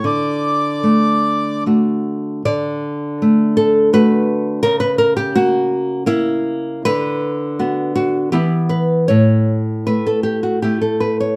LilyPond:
<<
  \new Staff \with { instrumentName = "Bandoneon" } { \time 3/4 \key d \major \tempo 4 = 80 d''2 r4 | r2. | r2. | r2. |
r2. | }
  \new Staff \with { instrumentName = "Nylon-string guitar" } { \time 3/4 \key d \major << { r2. | d''4. a'8 b'4 | ais'16 b'16 ais'16 g'16 fis'4 e'4 | b'4. fis'8 g'8 b'8 |
cis''4 b'16 a'16 g'16 fis'16 g'16 a'16 b'16 cis''16 | } \\ { d4 a4 <a fis'>4 | d4 a4 <a fis'>4 | cis4 ais4 ais4 | d4 <b fis'>4 <e b e'>4 |
a,4 a4 <a e'>4 | } >> }
>>